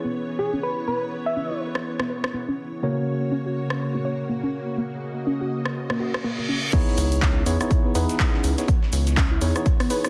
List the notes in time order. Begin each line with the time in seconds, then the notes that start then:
Already playing: E3 B3 C#4 E4 G#4 C#5
0.04 B3
0.15 B4
0.39 B3 G#4
0.53 C#4
0.63 B4
0.88 B3 B4
1.26 E5
1.37 C#4
1.51 E4
1.75 cross-stick
2.00 B3, cross-stick
2.10 B4
2.24 cross-stick
2.34 B3
2.48 C#4
2.83 C#3 A#3 C#4 F#4 A#4 C#5
3.32 C#4
3.46 F#4
3.70 cross-stick
3.95 A#3
4.05 C#5
4.29 A#3
4.43 C#4
4.78 A#3 D#5
5.27 C#4
5.41 F#4
5.65 cross-stick
5.76 reverse cymbal
5.90 A#3, cross-stick
6.00 F#4
6.14 cross-stick
6.24 A#3
6.39 A#3
6.49 C#4
6.73 E3 B3 D#4 E4 G#4 C#5, kick, closed hi-hat, crash, impact, cabasa
6.87 snare
6.97 C#2, closed hi-hat, open hi-hat, cabasa
7.12 closed hi-hat, cabasa
7.22 C#4, kick, snare, clap, closed hi-hat, cabasa
7.36 E4
7.46 E2 B3 D#4 E4 G#4 C#5, closed hi-hat, open hi-hat, cabasa
7.60 B3 D#4 E4 G#4 C#5, cross-stick, closed hi-hat, cabasa
7.71 kick, closed hi-hat, cabasa
7.85 B3
7.95 E2 B3 D#4 E4 G#4 B4, closed hi-hat, open hi-hat, cabasa
8.09 snare, closed hi-hat, cabasa
8.19 B3, kick, snare, clap, closed hi-hat, open hi-hat, cabasa
8.34 C#4, snare
8.44 C#2, closed hi-hat, open hi-hat, cabasa
8.58 B3 D#4 E4 G#4 C#5, snare, closed hi-hat, cabasa
8.68 B3, kick, closed hi-hat, cabasa
8.83 snare
8.93 C#2, closed hi-hat, open hi-hat, cabasa
9.07 snare, closed hi-hat, cabasa
9.17 C#4, kick, snare, clap, closed hi-hat, cabasa
9.31 E4
9.41 E2 B3 D#4 E4 G#4 C#5, closed hi-hat, open hi-hat, cabasa
9.56 B3 D#4 E4 G#4 C#5, cross-stick, closed hi-hat, cabasa
9.66 kick, closed hi-hat, cabasa
9.80 B3, cross-stick, open hi-hat
9.90 B3 D#4 E4 G#4 B4 C#5, closed hi-hat, open hi-hat, cabasa
10.04 cross-stick, snare, closed hi-hat, cabasa